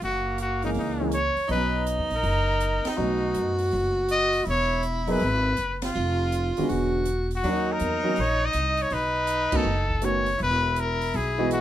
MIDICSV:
0, 0, Header, 1, 7, 480
1, 0, Start_track
1, 0, Key_signature, 5, "major"
1, 0, Tempo, 370828
1, 22, Time_signature, 4, 2, 24, 8
1, 15027, End_track
2, 0, Start_track
2, 0, Title_t, "Trumpet"
2, 0, Program_c, 0, 56
2, 47, Note_on_c, 0, 66, 80
2, 482, Note_off_c, 0, 66, 0
2, 533, Note_on_c, 0, 66, 77
2, 814, Note_off_c, 0, 66, 0
2, 840, Note_on_c, 0, 63, 63
2, 908, Note_off_c, 0, 63, 0
2, 1019, Note_on_c, 0, 63, 65
2, 1447, Note_off_c, 0, 63, 0
2, 1470, Note_on_c, 0, 73, 92
2, 1911, Note_off_c, 0, 73, 0
2, 1957, Note_on_c, 0, 71, 85
2, 2395, Note_off_c, 0, 71, 0
2, 2791, Note_on_c, 0, 70, 89
2, 3732, Note_on_c, 0, 63, 73
2, 3751, Note_off_c, 0, 70, 0
2, 4672, Note_off_c, 0, 63, 0
2, 5326, Note_on_c, 0, 75, 106
2, 5757, Note_off_c, 0, 75, 0
2, 5822, Note_on_c, 0, 73, 92
2, 6246, Note_off_c, 0, 73, 0
2, 6611, Note_on_c, 0, 71, 90
2, 7500, Note_off_c, 0, 71, 0
2, 7572, Note_on_c, 0, 65, 71
2, 8461, Note_off_c, 0, 65, 0
2, 9520, Note_on_c, 0, 66, 88
2, 9999, Note_on_c, 0, 70, 86
2, 10019, Note_off_c, 0, 66, 0
2, 10621, Note_on_c, 0, 73, 97
2, 10641, Note_off_c, 0, 70, 0
2, 10947, Note_on_c, 0, 75, 98
2, 10966, Note_off_c, 0, 73, 0
2, 11416, Note_on_c, 0, 73, 87
2, 11435, Note_off_c, 0, 75, 0
2, 11565, Note_on_c, 0, 71, 100
2, 11585, Note_off_c, 0, 73, 0
2, 12377, Note_on_c, 0, 69, 92
2, 12396, Note_off_c, 0, 71, 0
2, 13008, Note_on_c, 0, 73, 94
2, 13027, Note_off_c, 0, 69, 0
2, 13475, Note_off_c, 0, 73, 0
2, 13495, Note_on_c, 0, 71, 102
2, 13977, Note_on_c, 0, 70, 94
2, 13996, Note_off_c, 0, 71, 0
2, 14445, Note_on_c, 0, 68, 88
2, 14465, Note_off_c, 0, 70, 0
2, 14915, Note_off_c, 0, 68, 0
2, 14924, Note_on_c, 0, 66, 85
2, 15027, Note_off_c, 0, 66, 0
2, 15027, End_track
3, 0, Start_track
3, 0, Title_t, "Tenor saxophone"
3, 0, Program_c, 1, 66
3, 29, Note_on_c, 1, 58, 68
3, 1731, Note_off_c, 1, 58, 0
3, 1916, Note_on_c, 1, 63, 99
3, 3844, Note_on_c, 1, 66, 99
3, 3863, Note_off_c, 1, 63, 0
3, 5754, Note_on_c, 1, 64, 103
3, 5774, Note_off_c, 1, 66, 0
3, 7376, Note_off_c, 1, 64, 0
3, 7697, Note_on_c, 1, 65, 100
3, 8662, Note_on_c, 1, 66, 92
3, 8682, Note_off_c, 1, 65, 0
3, 9458, Note_off_c, 1, 66, 0
3, 9629, Note_on_c, 1, 63, 99
3, 11494, Note_off_c, 1, 63, 0
3, 11537, Note_on_c, 1, 63, 95
3, 13101, Note_off_c, 1, 63, 0
3, 13440, Note_on_c, 1, 64, 95
3, 15027, Note_off_c, 1, 64, 0
3, 15027, End_track
4, 0, Start_track
4, 0, Title_t, "Grand piano"
4, 0, Program_c, 2, 0
4, 821, Note_on_c, 2, 52, 43
4, 822, Note_on_c, 2, 56, 50
4, 826, Note_on_c, 2, 58, 45
4, 830, Note_on_c, 2, 61, 57
4, 1268, Note_off_c, 2, 52, 0
4, 1269, Note_off_c, 2, 56, 0
4, 1271, Note_off_c, 2, 58, 0
4, 1273, Note_off_c, 2, 61, 0
4, 1297, Note_on_c, 2, 56, 64
4, 1301, Note_on_c, 2, 52, 69
4, 1301, Note_on_c, 2, 58, 61
4, 1301, Note_on_c, 2, 61, 70
4, 1444, Note_off_c, 2, 56, 0
4, 1446, Note_off_c, 2, 52, 0
4, 1446, Note_off_c, 2, 58, 0
4, 1446, Note_off_c, 2, 61, 0
4, 1947, Note_on_c, 2, 54, 58
4, 1947, Note_on_c, 2, 61, 52
4, 1947, Note_on_c, 2, 63, 66
4, 1954, Note_on_c, 2, 59, 55
4, 2677, Note_off_c, 2, 54, 0
4, 2677, Note_off_c, 2, 61, 0
4, 2677, Note_off_c, 2, 63, 0
4, 2680, Note_off_c, 2, 59, 0
4, 3847, Note_on_c, 2, 54, 50
4, 3852, Note_on_c, 2, 57, 55
4, 3855, Note_on_c, 2, 63, 54
4, 3856, Note_on_c, 2, 59, 50
4, 3862, Note_on_c, 2, 61, 48
4, 5192, Note_off_c, 2, 54, 0
4, 5195, Note_off_c, 2, 57, 0
4, 5197, Note_off_c, 2, 59, 0
4, 5197, Note_off_c, 2, 63, 0
4, 5200, Note_off_c, 2, 61, 0
4, 6566, Note_on_c, 2, 54, 67
4, 6576, Note_on_c, 2, 58, 60
4, 6576, Note_on_c, 2, 63, 64
4, 6579, Note_on_c, 2, 59, 62
4, 6580, Note_on_c, 2, 68, 72
4, 6714, Note_off_c, 2, 54, 0
4, 6719, Note_off_c, 2, 58, 0
4, 6719, Note_off_c, 2, 63, 0
4, 6721, Note_off_c, 2, 59, 0
4, 6721, Note_off_c, 2, 68, 0
4, 8508, Note_on_c, 2, 56, 55
4, 8514, Note_on_c, 2, 50, 63
4, 8518, Note_on_c, 2, 61, 57
4, 8520, Note_on_c, 2, 59, 55
4, 8520, Note_on_c, 2, 66, 62
4, 9111, Note_off_c, 2, 56, 0
4, 9114, Note_off_c, 2, 50, 0
4, 9115, Note_off_c, 2, 61, 0
4, 9117, Note_off_c, 2, 59, 0
4, 9117, Note_off_c, 2, 66, 0
4, 9630, Note_on_c, 2, 51, 53
4, 9637, Note_on_c, 2, 54, 60
4, 9638, Note_on_c, 2, 66, 63
4, 9644, Note_on_c, 2, 58, 57
4, 9647, Note_on_c, 2, 61, 54
4, 10359, Note_off_c, 2, 51, 0
4, 10363, Note_off_c, 2, 54, 0
4, 10363, Note_off_c, 2, 66, 0
4, 10366, Note_off_c, 2, 58, 0
4, 10368, Note_off_c, 2, 61, 0
4, 10399, Note_on_c, 2, 54, 52
4, 10400, Note_on_c, 2, 51, 64
4, 10402, Note_on_c, 2, 61, 59
4, 10403, Note_on_c, 2, 58, 52
4, 10409, Note_on_c, 2, 66, 63
4, 10554, Note_off_c, 2, 51, 0
4, 10554, Note_off_c, 2, 54, 0
4, 10555, Note_off_c, 2, 61, 0
4, 10556, Note_off_c, 2, 58, 0
4, 10558, Note_off_c, 2, 66, 0
4, 12329, Note_on_c, 2, 51, 62
4, 12331, Note_on_c, 2, 57, 56
4, 12331, Note_on_c, 2, 59, 56
4, 12331, Note_on_c, 2, 61, 61
4, 12333, Note_on_c, 2, 66, 62
4, 12480, Note_off_c, 2, 51, 0
4, 12481, Note_off_c, 2, 57, 0
4, 12481, Note_off_c, 2, 59, 0
4, 12481, Note_off_c, 2, 61, 0
4, 12482, Note_off_c, 2, 66, 0
4, 12969, Note_on_c, 2, 57, 59
4, 12972, Note_on_c, 2, 59, 51
4, 12976, Note_on_c, 2, 51, 55
4, 12983, Note_on_c, 2, 61, 53
4, 12983, Note_on_c, 2, 66, 68
4, 13262, Note_off_c, 2, 57, 0
4, 13264, Note_off_c, 2, 59, 0
4, 13266, Note_off_c, 2, 51, 0
4, 13269, Note_off_c, 2, 61, 0
4, 13269, Note_off_c, 2, 66, 0
4, 14730, Note_on_c, 2, 52, 64
4, 14732, Note_on_c, 2, 56, 70
4, 14739, Note_on_c, 2, 59, 63
4, 14742, Note_on_c, 2, 66, 78
4, 14742, Note_on_c, 2, 75, 60
4, 15027, Note_off_c, 2, 52, 0
4, 15027, Note_off_c, 2, 56, 0
4, 15027, Note_off_c, 2, 59, 0
4, 15027, Note_off_c, 2, 66, 0
4, 15027, Note_off_c, 2, 75, 0
4, 15027, End_track
5, 0, Start_track
5, 0, Title_t, "Upright bass"
5, 0, Program_c, 3, 32
5, 25, Note_on_c, 3, 30, 70
5, 935, Note_off_c, 3, 30, 0
5, 978, Note_on_c, 3, 37, 82
5, 1725, Note_off_c, 3, 37, 0
5, 1930, Note_on_c, 3, 35, 82
5, 2529, Note_off_c, 3, 35, 0
5, 2569, Note_on_c, 3, 39, 57
5, 2709, Note_off_c, 3, 39, 0
5, 2717, Note_on_c, 3, 34, 62
5, 2876, Note_off_c, 3, 34, 0
5, 2889, Note_on_c, 3, 30, 81
5, 3639, Note_off_c, 3, 30, 0
5, 3858, Note_on_c, 3, 35, 78
5, 4303, Note_off_c, 3, 35, 0
5, 4344, Note_on_c, 3, 42, 74
5, 4786, Note_off_c, 3, 42, 0
5, 4825, Note_on_c, 3, 30, 88
5, 5731, Note_off_c, 3, 30, 0
5, 5782, Note_on_c, 3, 28, 81
5, 6689, Note_off_c, 3, 28, 0
5, 6746, Note_on_c, 3, 32, 89
5, 7187, Note_off_c, 3, 32, 0
5, 7227, Note_on_c, 3, 30, 62
5, 7667, Note_off_c, 3, 30, 0
5, 7709, Note_on_c, 3, 29, 84
5, 8449, Note_off_c, 3, 29, 0
5, 8670, Note_on_c, 3, 28, 80
5, 9576, Note_off_c, 3, 28, 0
5, 9622, Note_on_c, 3, 39, 70
5, 10067, Note_off_c, 3, 39, 0
5, 10105, Note_on_c, 3, 40, 73
5, 10549, Note_off_c, 3, 40, 0
5, 10588, Note_on_c, 3, 34, 86
5, 11030, Note_off_c, 3, 34, 0
5, 11056, Note_on_c, 3, 36, 61
5, 11505, Note_off_c, 3, 36, 0
5, 11532, Note_on_c, 3, 35, 74
5, 12283, Note_off_c, 3, 35, 0
5, 12484, Note_on_c, 3, 30, 80
5, 13405, Note_off_c, 3, 30, 0
5, 13464, Note_on_c, 3, 28, 86
5, 14376, Note_off_c, 3, 28, 0
5, 14423, Note_on_c, 3, 35, 88
5, 15027, Note_off_c, 3, 35, 0
5, 15027, End_track
6, 0, Start_track
6, 0, Title_t, "Muted upright bass strokes"
6, 1764, Note_on_c, 9, 29, 33
6, 1894, Note_off_c, 9, 29, 0
6, 3692, Note_on_c, 9, 29, 38
6, 3821, Note_off_c, 9, 29, 0
6, 8526, Note_on_c, 9, 29, 42
6, 8655, Note_off_c, 9, 29, 0
6, 12332, Note_on_c, 9, 29, 39
6, 12461, Note_off_c, 9, 29, 0
6, 15027, End_track
7, 0, Start_track
7, 0, Title_t, "Drums"
7, 21, Note_on_c, 9, 46, 41
7, 151, Note_off_c, 9, 46, 0
7, 494, Note_on_c, 9, 42, 51
7, 623, Note_off_c, 9, 42, 0
7, 808, Note_on_c, 9, 46, 36
7, 938, Note_off_c, 9, 46, 0
7, 963, Note_on_c, 9, 46, 41
7, 1092, Note_off_c, 9, 46, 0
7, 1445, Note_on_c, 9, 42, 50
7, 1574, Note_off_c, 9, 42, 0
7, 1767, Note_on_c, 9, 46, 35
7, 1897, Note_off_c, 9, 46, 0
7, 1929, Note_on_c, 9, 46, 44
7, 2058, Note_off_c, 9, 46, 0
7, 2415, Note_on_c, 9, 42, 54
7, 2544, Note_off_c, 9, 42, 0
7, 2725, Note_on_c, 9, 46, 41
7, 2855, Note_off_c, 9, 46, 0
7, 2892, Note_on_c, 9, 46, 44
7, 3022, Note_off_c, 9, 46, 0
7, 3371, Note_on_c, 9, 42, 52
7, 3500, Note_off_c, 9, 42, 0
7, 3687, Note_on_c, 9, 51, 65
7, 3693, Note_on_c, 9, 38, 70
7, 3816, Note_off_c, 9, 51, 0
7, 3823, Note_off_c, 9, 38, 0
7, 4328, Note_on_c, 9, 42, 50
7, 4458, Note_off_c, 9, 42, 0
7, 4641, Note_on_c, 9, 46, 43
7, 4771, Note_off_c, 9, 46, 0
7, 4804, Note_on_c, 9, 46, 39
7, 4933, Note_off_c, 9, 46, 0
7, 5288, Note_on_c, 9, 42, 51
7, 5417, Note_off_c, 9, 42, 0
7, 5602, Note_on_c, 9, 46, 41
7, 5732, Note_off_c, 9, 46, 0
7, 5764, Note_on_c, 9, 46, 44
7, 5894, Note_off_c, 9, 46, 0
7, 6249, Note_on_c, 9, 42, 50
7, 6379, Note_off_c, 9, 42, 0
7, 6568, Note_on_c, 9, 46, 42
7, 6698, Note_off_c, 9, 46, 0
7, 6723, Note_on_c, 9, 46, 42
7, 6853, Note_off_c, 9, 46, 0
7, 7206, Note_on_c, 9, 42, 49
7, 7335, Note_off_c, 9, 42, 0
7, 7531, Note_on_c, 9, 51, 70
7, 7538, Note_on_c, 9, 38, 79
7, 7661, Note_off_c, 9, 51, 0
7, 7667, Note_off_c, 9, 38, 0
7, 8183, Note_on_c, 9, 42, 44
7, 8312, Note_off_c, 9, 42, 0
7, 8503, Note_on_c, 9, 46, 42
7, 8632, Note_off_c, 9, 46, 0
7, 8665, Note_on_c, 9, 46, 48
7, 8795, Note_off_c, 9, 46, 0
7, 9131, Note_on_c, 9, 42, 51
7, 9261, Note_off_c, 9, 42, 0
7, 9459, Note_on_c, 9, 46, 40
7, 9588, Note_off_c, 9, 46, 0
7, 9626, Note_on_c, 9, 46, 43
7, 9756, Note_off_c, 9, 46, 0
7, 10091, Note_on_c, 9, 42, 49
7, 10220, Note_off_c, 9, 42, 0
7, 10563, Note_on_c, 9, 46, 43
7, 10692, Note_off_c, 9, 46, 0
7, 11041, Note_on_c, 9, 42, 55
7, 11171, Note_off_c, 9, 42, 0
7, 11355, Note_on_c, 9, 46, 39
7, 11485, Note_off_c, 9, 46, 0
7, 11522, Note_on_c, 9, 46, 39
7, 11651, Note_off_c, 9, 46, 0
7, 12000, Note_on_c, 9, 42, 52
7, 12129, Note_off_c, 9, 42, 0
7, 12323, Note_on_c, 9, 49, 87
7, 12327, Note_on_c, 9, 36, 87
7, 12452, Note_off_c, 9, 49, 0
7, 12457, Note_off_c, 9, 36, 0
7, 12812, Note_on_c, 9, 36, 56
7, 12941, Note_off_c, 9, 36, 0
7, 12965, Note_on_c, 9, 42, 48
7, 13095, Note_off_c, 9, 42, 0
7, 13284, Note_on_c, 9, 46, 43
7, 13413, Note_off_c, 9, 46, 0
7, 13447, Note_on_c, 9, 46, 42
7, 13576, Note_off_c, 9, 46, 0
7, 13930, Note_on_c, 9, 42, 52
7, 14060, Note_off_c, 9, 42, 0
7, 14256, Note_on_c, 9, 46, 46
7, 14386, Note_off_c, 9, 46, 0
7, 14417, Note_on_c, 9, 46, 45
7, 14546, Note_off_c, 9, 46, 0
7, 14896, Note_on_c, 9, 42, 52
7, 15025, Note_off_c, 9, 42, 0
7, 15027, End_track
0, 0, End_of_file